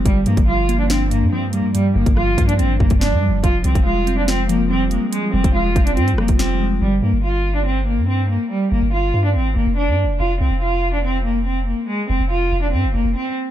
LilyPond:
<<
  \new Staff \with { instrumentName = "Cello" } { \time 4/4 \key f \dorian \tempo 4 = 142 g8 bes8 f'8. d'16 c'8 bes8 c'8 bes8 | g8 bes8 f'8. d'16 c'8 bes8 d'8 r8 | f'8 c'8 f'8. d'16 c'8 bes8 c'8 bes8 | aes8 c'8 f'8. d'16 c'8 bes8 c'8 r8 |
g8 bes8 f'8. d'16 c'8 bes8 c'8 bes8 | g8 bes8 f'8. d'16 c'8 bes8 d'8 r8 | f'8 c'8 f'8. d'16 c'8 bes8 c'8 bes8 | aes8 c'8 f'8. d'16 c'8 bes8 c'8 r8 | }
  \new Staff \with { instrumentName = "Synth keys" } { \clef bass \time 4/4 \key f \dorian g,8 f8 g8 bes8 d'8 g,8 f8 g8 | g,8 f8 g8 bes8 d'8 g,8 f8 g8 | f8 g8 aes8 c'8 f'8 f8 g8 aes8 | f8 g8 aes8 c'8 f'8 f8 g8 aes8 |
r1 | r1 | r1 | r1 | }
  \new Staff \with { instrumentName = "808-style bass" } { \clef bass \time 4/4 \key f \dorian g,,8 g,16 g,,2 g,4 r16 | r8 g,,16 g,,8. g,8 aes,,8 g,,16 f,,8 g,16. f,,16. | f,,8 c,16 f,,2. r16 | r8 f,,16 f,,8. f,,8 aes,16. f,,16. f,,4~ f,,16 |
g,,8 g,16 g,,2 g,4 r16 | r8 g,,16 g,,8. g,8 aes,,8 g,,16 f,,8 g,16. f,,16. | f,,8 c,16 f,,2. r16 | r8 f,,16 f,,8. f,,8 aes,16 f,,16 f,,16 f,,16 r4 | }
  \new DrumStaff \with { instrumentName = "Drums" } \drummode { \time 4/4 <hh bd>8 hh16 <hh bd>16 r8 hh8 sn8 hh8 r8 hh8 | hh8. <hh bd>16 ss8 <hh bd>16 hh16 hh8 bd16 <hh bd>16 sn4 | <hh bd>8 hh16 <hh bd>16 r8 hh8 sn8 hh8 r8 hh8 | hh8. <hh bd>16 r8 <hh bd>16 hh16 hh16 hh16 ss16 <hh bd>16 sn4 |
r4 r4 r4 r4 | r4 r4 r4 r4 | r4 r4 r4 r4 | r4 r4 r4 r4 | }
>>